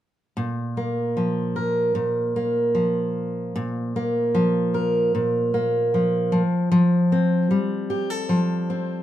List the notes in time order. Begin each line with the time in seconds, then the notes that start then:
0.37 A#2
0.77 A#3
1.17 F3
1.56 A#4
1.95 A#2
2.36 A#3
2.75 F3
3.56 A#2
3.96 A#3
4.35 F3
4.74 A#4
5.15 A#2
5.54 A#3
5.94 F3
6.32 F3
6.72 F3
7.12 C4
7.51 G3
7.90 G4
8.10 A4
8.29 F3
8.70 C4